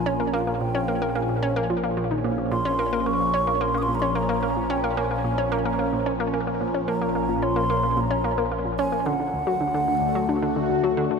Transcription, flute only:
0.00 0.33 G#5 loud
0.34 0.62 F5 medium
0.61 1.17 G5 loud
1.16 1.70 G#5 medium
2.52 3.08 C6 loud
3.06 3.62 C#6 loud
3.61 3.79 C6 loud
3.78 3.84 D#6 loud
3.83 3.96 C6 loud
3.95 4.01 A#5 loud
4.00 4.17 C6 loud
4.15 4.72 A#5 loud
4.70 4.99 G5 medium
4.97 5.53 G#5 loud
5.52 5.60 A#5 medium
5.59 5.67 G#5 medium
5.66 6.06 A#5 medium
6.88 7.44 A#5 loud
7.43 7.97 C6 loud
7.97 8.52 A#5 loud
7.97 8.01 C6 medium
8.79 9.07 G#5 loud
9.06 10.97 F#5 loud

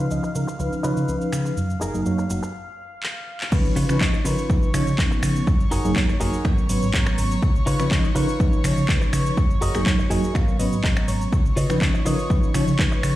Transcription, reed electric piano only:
0.10 0.28 F3 medium
0.10 0.28 C#4 medium
0.10 0.28 D#4 medium
0.10 0.28 D#5 medium
0.35 0.46 F3 medium
0.35 0.46 C#4 medium
0.35 0.46 D#4 medium
0.35 0.47 A#4 medium
0.59 0.81 F3 medium
0.59 0.81 C#4 medium
0.59 0.81 D#4 medium
0.59 0.82 B4 medium
0.84 1.01 F3 medium
0.84 1.01 C#4 medium
0.84 1.01 D#4 medium
0.84 1.01 C#5 medium
1.08 1.56 F3 medium
1.08 1.56 C#4 medium
1.08 1.56 D#4 medium
1.08 1.56 B4 medium
1.94 2.03 F#3 medium
1.94 2.03 A#3 medium
1.94 2.03 D#4 medium
1.94 2.03 G#4 medium
2.06 2.23 F#3 medium
2.06 2.23 A#3 medium
2.06 2.23 D#4 medium
2.06 2.23 C#5 medium
2.30 2.41 F#3 medium
2.30 2.41 A#3 medium
2.30 2.41 D#4 medium
2.30 2.42 F#4 medium
3.52 3.84 F3 loud
3.52 3.84 C#4 medium
3.52 3.84 D#4 medium
3.52 3.85 B4 loud
3.89 3.98 F3 medium
3.89 3.98 C#4 medium
3.89 3.98 D#4 medium
3.89 3.98 B4 loud
4.00 4.18 F3 medium
4.00 4.18 C#4 medium
4.00 4.18 D#4 medium
4.00 4.18 D#5 loud
4.25 4.36 F3 medium
4.25 4.36 C#4 medium
4.25 4.36 D#4 medium
4.25 4.37 A#4 medium
4.49 4.71 F3 medium
4.49 4.71 C#4 medium
4.49 4.71 D#4 medium
4.49 4.72 B4 medium
4.74 4.91 F3 medium
4.74 4.91 C#4 medium
4.74 4.91 D#4 medium
4.74 4.91 C#5 loud
4.98 5.46 F3 medium
4.98 5.46 B3 medium
4.98 5.46 C#4 medium
4.98 5.46 D#4 medium
5.84 5.93 F#3 medium
5.84 5.93 A#3 medium
5.84 5.93 D#4 medium
5.84 5.94 G#4 loud
5.96 6.13 F#3 medium
5.96 6.13 A#3 medium
5.96 6.13 D#4 medium
5.96 6.13 C#5 loud
6.20 6.31 F#3 medium
6.20 6.32 A#3 medium
6.20 6.32 D#4 medium
6.20 6.32 F#4 medium
6.45 6.67 F#3 medium
6.45 6.67 B3 medium
6.45 6.67 C#4 medium
6.45 6.67 A#4 medium
6.69 6.86 F#3 medium
6.69 6.87 B3 medium
6.69 6.87 C#4 medium
6.69 6.87 B4 loud
6.94 7.41 F#3 medium
6.94 7.41 B3 medium
6.94 7.41 C#4 medium
6.94 7.41 A#5 medium
7.79 7.88 F3 loud
7.79 7.89 C#4 medium
7.79 7.89 D#4 medium
7.79 7.89 B4 loud
7.91 8.08 F3 medium
7.91 8.08 C#4 medium
7.91 8.09 D#4 medium
7.91 8.09 D#5 loud
8.16 8.27 F3 medium
8.16 8.27 C#4 medium
8.16 8.27 D#4 medium
8.16 8.27 A#4 medium
8.40 8.62 F3 medium
8.40 8.62 C#4 medium
8.40 8.62 D#4 medium
8.40 8.62 B4 medium
8.64 8.81 F3 medium
8.64 8.82 C#4 medium
8.64 8.82 D#4 medium
8.64 8.82 C#5 loud
8.89 9.36 F3 medium
8.89 9.36 C#4 medium
8.89 9.36 D#4 medium
8.89 9.37 B4 medium
9.75 9.83 F#3 medium
9.75 9.84 A#3 medium
9.75 9.84 D#4 medium
9.75 9.84 G#4 loud
9.86 10.03 F#3 medium
9.86 10.03 A#3 medium
9.86 10.04 D#4 medium
9.86 10.04 C#5 loud
10.10 10.22 F#3 medium
10.10 10.22 A#3 medium
10.10 10.22 D#4 medium
10.10 10.22 F#4 medium
10.35 10.57 F#3 medium
10.35 10.57 B3 medium
10.35 10.57 C#4 medium
10.35 10.57 A#4 medium
10.59 10.77 F#3 medium
10.59 10.77 B3 medium
10.59 10.77 C#4 medium
10.59 10.77 B4 loud
10.84 11.31 F#3 medium
10.84 11.31 B3 medium
10.84 11.31 C#4 medium
10.84 11.32 A#5 medium
11.70 11.78 F3 medium
11.70 11.79 C#4 medium
11.70 11.79 D#4 medium
11.70 11.79 B4 loud
11.81 11.98 F3 medium
11.81 11.98 C#4 medium
11.81 11.99 D#4 medium
11.81 11.99 D#5 loud
12.06 12.17 F3 medium
12.06 12.17 C#4 medium
12.06 12.17 D#4 medium
12.06 12.17 A#4 medium
12.30 12.52 F3 medium
12.30 12.52 C#4 medium
12.30 12.52 D#4 medium
12.30 12.52 B4 medium
12.54 12.72 F3 loud
12.54 12.72 C#4 medium
12.54 12.72 D#4 medium
12.54 12.72 C#5 loud
12.79 13.16 F3 medium
12.79 13.16 C#4 medium
12.79 13.16 D#4 medium
12.79 13.16 B4 medium

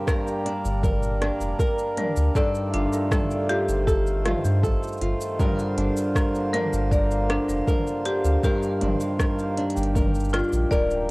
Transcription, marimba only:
1.98 2.20 A#4 medium
2.36 2.72 D5 medium
2.74 3.10 D4 medium
3.49 3.86 G4 loud
3.87 4.23 G4 medium
6.53 6.75 A#4 medium
6.91 7.28 D5 medium
7.30 7.66 D4 medium
8.06 8.42 G4 loud
8.44 8.80 G4 medium
10.33 10.55 F4 medium
10.71 11.07 D5 loud

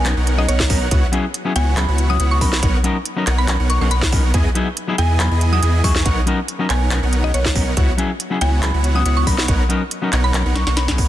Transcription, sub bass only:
0.00 0.15 B1 loud
0.17 0.46 B1 loud
0.48 0.68 B1 loud
0.70 0.89 B1 loud
0.91 1.04 C#2 loud
1.56 1.86 C#2 medium
1.88 2.18 C#2 loud
2.20 2.43 C#2 loud
2.41 2.61 B1 loud
2.63 2.76 B1 loud
3.27 3.58 B1 medium
3.60 3.79 B1 loud
3.81 4.32 B1 loud
4.34 4.47 E2 loud
4.98 5.29 E2 loud
5.31 5.61 E2 loud
5.63 5.82 E2 loud
5.84 6.04 E2 medium
6.06 6.19 B1 loud
6.70 7.00 B1 medium
7.03 7.32 B1 loud
7.34 7.54 B1 loud
7.56 7.75 B1 loud
7.77 7.90 C#2 loud
8.41 8.72 C#2 loud
8.74 9.04 C#2 loud
9.05 9.25 C#2 loud
9.27 9.46 B1 medium
9.48 9.61 B1 loud
10.13 10.43 B1 loud
10.45 10.65 B1 loud
10.67 11.08 B1 loud

